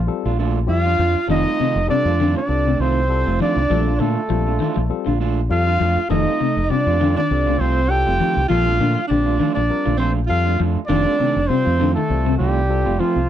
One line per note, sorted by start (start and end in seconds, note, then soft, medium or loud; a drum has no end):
0.00 0.10 F3 medium
0.07 0.30 G3 medium
0.07 0.31 C4 medium
0.07 0.31 F4 medium
0.07 0.31 A4 medium
0.25 0.67 A#1 medium
0.25 0.39 D4 medium
0.25 0.39 F4 medium
0.39 0.58 A3 medium
0.39 0.59 D4 medium
0.39 0.59 F4 medium
0.66 0.97 F2 medium
0.66 0.90 G3 medium
0.66 0.90 C4 medium
0.66 0.90 F4 medium
0.66 1.25 F4 medium
0.66 0.91 G4 medium
0.70 1.26 F5 loud
0.86 0.98 D4 soft
0.86 0.99 F4 medium
0.99 1.14 F2 medium
0.99 1.14 F3 medium
0.99 1.19 D4 medium
0.99 1.19 F4 medium
1.15 muted fingered electric bass stroke soft
1.27 1.44 F1 loud
1.27 1.45 D#3 loud
1.27 1.46 D#3 medium
1.27 1.51 G3 medium
1.27 1.46 A3 medium
1.27 1.51 C4 medium
1.27 1.45 C4 medium
1.27 1.86 D#4 loud
1.27 1.51 F4 medium
1.27 1.45 F4 medium
1.27 1.51 A4 medium
1.27 1.86 D#5 loud
1.46 1.59 A3 soft
1.46 1.59 C4 soft
1.46 1.59 F4 medium
1.59 1.75 C3 medium
1.59 1.79 D#3 medium
1.59 1.79 A3 medium
1.59 1.79 C4 medium
1.59 1.79 F4 medium
1.59 muted fingered electric bass stroke soft
1.76 1.88 F1 medium
1.87 2.05 C3 medium
1.87 2.11 G3 medium
1.87 2.11 C4 medium
1.87 2.33 D4 medium
1.87 2.11 F4 medium
1.87 2.11 A4 medium
1.87 2.33 D5 loud
2.05 2.34 F2 medium
2.05 2.19 A3 soft
2.05 2.20 C4 soft
2.05 2.20 F4 medium
2.20 2.28 D3 medium
2.20 2.39 D#3 medium
2.20 2.39 A3 medium
2.20 2.39 C4 medium
2.20 2.40 F4 medium
2.36 2.83 D4 medium
2.36 2.82 D5 loud
2.36 muted clean electric guitar stroke medium
2.48 2.78 C2 medium
2.48 2.71 G3 medium
2.48 2.71 C4 medium
2.48 2.71 F4 medium
2.48 2.72 A4 medium
2.67 2.82 C3 medium
2.67 2.79 A3 soft
2.67 2.80 C4 soft
2.79 3.23 C2 medium
2.79 2.99 D#3 medium
2.79 2.99 A3 medium
2.79 2.99 C4 medium
2.79 3.41 C4 medium
2.79 3.00 F4 medium
2.79 3.40 C5 loud
3.08 3.31 G3 medium
3.08 3.32 C4 medium
3.08 3.32 F4 medium
3.08 3.32 A4 medium
3.26 3.39 F1 medium
3.26 3.40 A3 soft
3.26 3.40 F4 medium
3.26 muted clean electric guitar stroke medium
3.40 3.59 D#3 medium
3.40 3.55 F3 medium
3.40 3.59 A3 medium
3.40 3.60 C4 medium
3.40 4.04 D4 medium
3.40 3.60 F4 medium
3.40 4.01 D5 loud
3.56 3.69 C2 medium
3.69 3.98 A#1 loud
3.69 3.86 F3 medium
3.69 3.92 G3 medium
3.69 3.87 A3 medium
3.69 3.92 C4 medium
3.69 3.87 D4 medium
3.69 3.92 F4 medium
3.69 3.92 A4 medium
3.69 muted clean electric guitar stroke medium
3.88 4.00 D4 soft
3.88 4.00 F4 medium
4.00 4.16 A#2 medium
4.00 4.15 D3 medium
4.00 4.19 A3 medium
4.00 4.91 A3 medium
4.00 4.20 D4 medium
4.00 4.20 F4 medium
4.00 4.90 A4 medium
4.29 4.58 A#1 medium
4.29 4.45 F3 medium
4.29 4.52 G3 medium
4.29 4.52 C4 medium
4.29 4.52 F4 medium
4.29 4.52 A4 medium
4.47 4.60 D4 soft
4.47 4.60 F4 medium
4.60 4.68 D#3 medium
4.60 4.79 A3 medium
4.60 4.80 D4 medium
4.60 4.80 F4 medium
4.76 4.90 A#1 medium
4.76 4.91 F3 medium
4.89 5.12 G3 medium
4.89 5.12 C4 medium
4.89 5.12 F4 medium
4.89 5.12 A4 medium
5.06 5.48 A#1 medium
5.06 5.21 D3 medium
5.06 5.19 D4 soft
5.06 5.20 F4 medium
5.20 5.39 A3 medium
5.20 5.40 D4 medium
5.20 5.40 F4 medium
5.49 5.79 F2 medium
5.49 5.72 G3 medium
5.49 5.72 C4 medium
5.49 5.72 F4 medium
5.49 6.07 F4 medium
5.49 5.73 A4 medium
5.49 6.07 F5 loud
5.67 5.80 D4 soft
5.67 5.80 F4 medium
5.80 5.96 F2 medium
5.80 5.95 F3 medium
5.80 5.99 A3 medium
5.80 6.00 D4 medium
5.80 6.00 F4 medium
5.97 muted fingered electric bass stroke soft
6.09 6.26 F1 loud
6.09 6.27 D#3 medium
6.09 6.26 D#3 medium
6.09 6.32 G3 medium
6.09 6.26 A3 medium
6.09 6.32 C4 medium
6.09 6.73 D#4 medium
6.09 6.32 F4 medium
6.09 6.32 A4 medium
6.09 6.71 D#5 loud
6.09 muted clean electric guitar stroke medium
6.26 6.40 A3 soft
6.26 6.40 C4 soft
6.26 6.40 F4 soft
6.40 6.56 C3 medium
6.40 6.60 A3 medium
6.40 muted fingered electric bass stroke soft
6.40 muted clean electric guitar stroke medium
6.57 6.69 F1 medium
6.70 6.86 C3 medium
6.70 6.92 G3 medium
6.70 6.93 C4 medium
6.70 7.16 D4 medium
6.70 6.93 F4 medium
6.70 6.93 G4 medium
6.70 7.16 D5 loud
6.86 7.15 F2 medium
6.86 6.99 A3 soft
6.86 6.99 C4 soft
6.86 6.99 F4 medium
6.99 7.09 D3 medium
6.99 7.19 D#3 medium
6.99 7.19 A3 medium
6.99 7.19 C4 medium
6.99 7.19 F4 medium
7.16 7.32 D#3 medium
7.16 7.60 D4 medium
7.16 7.62 D5 loud
7.31 7.59 C2 medium
7.31 7.53 G3 medium
7.31 7.53 C4 medium
7.31 7.53 F4 medium
7.31 7.53 A4 medium
7.46 7.62 C3 medium
7.46 7.59 A3 soft
7.46 7.59 C4 soft
7.46 7.60 F4 medium
7.58 8.04 C2 medium
7.58 7.79 A3 medium
7.58 7.91 C4 medium
7.58 7.79 C4 medium
7.58 7.80 F4 medium
7.58 7.92 C5 loud
7.58 muted clean electric guitar stroke medium
7.89 8.12 G3 medium
7.89 8.12 C4 medium
7.89 8.13 F4 medium
7.89 8.48 G4 medium
7.89 8.13 A4 medium
7.89 8.48 G5 loud
8.07 8.19 F1 medium
8.07 8.19 A3 soft
8.07 8.20 C4 soft
8.07 8.20 F4 medium
8.20 8.39 D#3 medium
8.20 8.36 F3 medium
8.20 8.39 A3 medium
8.20 8.40 C4 medium
8.20 8.40 F4 medium
8.37 8.49 C2 medium
8.48 8.78 A#1 loud
8.48 8.65 F3 medium
8.48 8.66 F3 medium
8.48 8.72 G3 medium
8.48 8.72 C4 medium
8.48 8.66 D4 medium
8.48 9.05 F4 medium
8.48 8.72 F4 medium
8.48 8.65 F4 medium
8.48 8.73 A4 medium
8.48 9.06 F5 loud
8.48 muted clean electric guitar stroke medium
8.66 8.79 A3 soft
8.66 8.79 D4 medium
8.66 8.80 F4 medium
8.79 8.95 A#2 loud
8.79 8.96 D3 medium
8.79 8.99 F3 medium
8.79 8.99 A3 medium
8.79 8.99 D4 medium
8.79 9.00 F4 medium
9.08 9.39 A#1 medium
9.08 9.25 D3 medium
9.08 9.32 G3 medium
9.08 9.32 C4 medium
9.08 9.52 D4 medium
9.08 9.33 F4 medium
9.08 9.33 G4 medium
9.08 9.52 D5 medium
9.26 9.38 A3 soft
9.26 9.39 D4 soft
9.26 9.39 F4 medium
9.39 9.48 D#3 medium
9.39 9.59 F3 medium
9.39 9.59 A3 medium
9.39 9.59 D4 medium
9.39 9.59 F4 medium
9.54 9.69 A#1 medium
9.54 9.72 F3 medium
9.54 9.96 D4 medium
9.54 9.96 D5 loud
9.69 9.92 G3 medium
9.69 9.92 C4 medium
9.69 9.92 F4 medium
9.69 9.92 A#4 medium
9.85 10.28 A#1 medium
9.85 10.01 D3 medium
9.85 9.98 A3 soft
9.85 9.98 D4 soft
9.85 9.99 F4 medium
9.97 10.19 F3 medium
9.97 10.19 A3 medium
9.97 10.11 C4 medium
9.97 10.19 D4 medium
9.97 10.19 F4 medium
9.97 10.13 C5 medium
10.27 10.58 F2 medium
10.27 10.52 G3 medium
10.27 10.52 C4 medium
10.27 10.59 F4 medium
10.27 10.52 F4 medium
10.27 10.52 A4 medium
10.27 10.61 F5 loud
10.45 10.58 A3 soft
10.45 10.58 D4 soft
10.45 10.59 F4 medium
10.59 10.76 F2 medium
10.59 10.79 F3 medium
10.59 10.75 F3 medium
10.59 10.79 A3 medium
10.59 10.79 D4 medium
10.59 10.79 F4 medium
10.76 muted fingered electric bass stroke soft
10.87 11.05 F1 loud
10.87 11.06 D#3 medium
10.87 11.05 D#3 medium
10.87 11.12 G3 medium
10.87 11.05 A3 medium
10.87 11.05 C4 medium
10.87 11.12 C4 medium
10.87 11.50 D4 loud
10.87 11.04 F4 medium
10.87 11.12 F4 medium
10.87 11.12 A4 medium
10.87 11.49 D5 loud
11.05 11.18 A3 soft
11.05 11.18 C4 medium
11.05 11.18 F4 medium
11.18 11.35 C3 medium
11.18 11.38 D#3 medium
11.18 11.39 A3 medium
11.18 11.39 C4 medium
11.18 muted clean electric guitar stroke medium
11.18 muted fingered electric bass stroke soft
11.36 11.49 F1 medium
11.48 11.65 C3 medium
11.48 11.72 G3 medium
11.48 11.94 C4 medium
11.48 11.72 C4 medium
11.48 11.72 F4 medium
11.48 11.94 C5 loud
11.48 11.72 C5 medium
11.65 11.95 F2 medium
11.65 11.78 A3 soft
11.65 11.78 C4 soft
11.65 11.78 F4 medium
11.78 11.89 D3 medium
11.78 11.98 D#3 medium
11.78 11.99 A3 medium
11.78 11.99 C4 medium
11.78 11.99 F4 medium
11.94 12.12 D#3 medium
11.94 12.36 A3 medium
11.94 12.36 A4 medium
12.09 12.38 C2 medium
12.09 12.32 G3 medium
12.09 12.32 C4 medium
12.09 12.32 F4 medium
12.09 12.32 C5 medium
12.25 12.42 C3 medium
12.25 12.38 A3 soft
12.25 12.39 C4 medium
12.25 muted clean electric guitar stroke medium
12.38 12.84 C2 loud
12.38 12.59 D#3 medium
12.38 13.01 G3 medium
12.38 12.59 A3 medium
12.38 12.59 C4 medium
12.38 12.59 F4 medium
12.38 13.01 G4 medium
12.69 12.92 G3 medium
12.69 12.92 C4 medium
12.69 12.92 F4 medium
12.69 12.92 A4 medium
12.86 12.99 F1 medium
12.86 12.98 A3 soft
12.86 12.98 C4 soft
12.86 12.98 F4 medium
12.99 13.29 F3 medium
12.99 13.16 F3 medium
12.99 13.19 A3 medium
12.99 13.19 C4 medium
12.99 13.19 F4 medium
12.99 13.29 F4 medium
12.99 muted clean electric guitar stroke medium
13.16 13.29 C2 medium